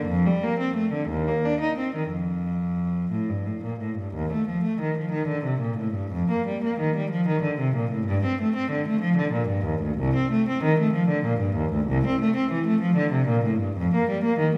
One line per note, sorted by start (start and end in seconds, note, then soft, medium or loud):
0.06 0.25 F2 medium
0.26 0.43 G3 medium
0.43 0.60 A#3 medium
0.59 0.76 C4 medium
0.76 0.93 A3 soft
0.93 1.09 D3 soft
1.09 1.26 D#2 medium
1.28 1.44 A#3 soft
1.45 1.61 D4 soft
1.61 1.77 D#4 soft
1.78 1.94 C4 soft
1.95 2.11 D#3 soft
2.11 3.11 F2 soft
3.12 3.29 A2 soft
3.29 3.46 G2 soft
3.46 3.63 A2 soft
3.64 3.81 A#2 soft
3.80 3.97 A2 soft
3.98 4.15 G2 soft
4.15 4.31 D#2 medium
4.33 4.48 A3 soft
4.48 4.64 F3 soft
4.64 4.80 A3 soft
4.81 4.97 D#3 soft
4.98 5.13 F3 soft
5.12 5.28 D#3 medium
5.28 5.45 D3 soft
5.45 5.62 C3 soft
5.60 5.78 A#2 soft
5.78 5.95 A2 soft
5.95 6.12 G2 soft
6.12 6.29 F2 medium
6.31 6.47 A#3 soft
6.47 6.63 G3 soft
6.64 6.80 A#3 soft
6.80 6.95 D#3 soft
6.97 7.12 G3 medium
7.11 7.27 F3 medium
7.28 7.44 D#3 soft
7.43 7.59 D3 medium
7.60 7.75 C3 medium
7.76 7.91 A#2 soft
7.91 8.06 A2 medium
8.06 8.21 G2 medium
8.25 8.38 C4 medium
8.41 8.54 A3 medium
8.56 8.69 C4 medium
8.71 8.85 D3 medium
8.88 9.01 A3 medium
9.01 9.16 F3 medium
9.17 9.32 D3 medium
9.33 9.49 A#2 medium
9.48 9.65 G2 medium
9.65 9.82 D#2 medium
9.82 9.99 D2 medium
9.99 10.15 C2 medium
10.16 10.32 C4 medium
10.32 10.47 A3 medium
10.49 10.64 C4 medium
10.63 10.79 D#3 medium
10.80 10.95 A3 medium
10.93 11.09 F3 medium
11.09 11.25 D3 medium
11.25 11.41 A#2 medium
11.40 11.56 G2 medium
11.57 11.72 D#2 medium
11.73 11.88 D2 medium
11.87 12.03 C2 medium
12.06 12.20 C4 medium
12.21 12.35 A3 medium
12.36 12.50 C4 medium
12.51 12.65 E3 medium
12.67 12.81 A3 medium
12.81 12.96 F3 medium
12.96 13.12 D3 medium
13.12 13.28 C3 medium
13.28 13.44 A#2 medium
13.45 13.61 A2 medium
13.60 13.76 G2 medium
13.77 13.92 F2 medium
13.95 14.09 A#3 medium
14.09 14.24 G3 medium
14.24 14.39 A#3 medium
14.39 14.54 D#3 soft